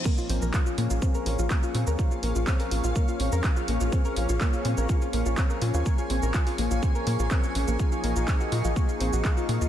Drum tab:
CC |x---------------|----------------|----------------|----------------|
HH |--o---o---o---o-|--o--oo---o---o-|--o---o---o---o-|--o--oo---o---o-|
SH |xx-xxx-xxx-xxx-x|xx-xxx-xxx-xxx-x|xx-xxx-xxx-xxx-x|xx-xxx-xxx-xxx-x|
CP |----x-------x---|----x-------x---|----x-------x---|----x-------x---|
BD |o---o---o---o---|o---o---o---o---|o---o---o---o---|o---o---o---o---|

CC |----------------|
HH |--o---o---o---o-|
SH |xx-xxx-xxx-xxx-x|
CP |----x-------x---|
BD |o---o---o---o---|